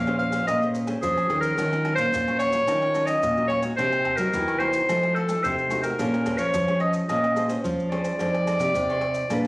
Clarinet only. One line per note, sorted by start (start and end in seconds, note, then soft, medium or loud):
0.00 0.18 F5 medium
0.19 0.45 F5 loud
0.47 0.64 D#5 loud
1.02 1.40 G#4 medium
1.41 1.94 A#4 loud
1.96 2.36 C5 loud
2.39 3.08 C#5 loud
3.06 3.47 D#5 loud
3.48 3.61 C#5 loud
3.77 4.18 C5 loud
4.17 4.60 A#4 medium
4.59 5.16 C5 medium
5.15 5.45 A4 medium
5.43 5.82 C5 medium
5.83 6.40 A#4 medium
6.38 6.80 C#5 loud
6.80 6.93 D#5 medium
7.09 7.48 D#5 medium
7.90 9.47 D5 loud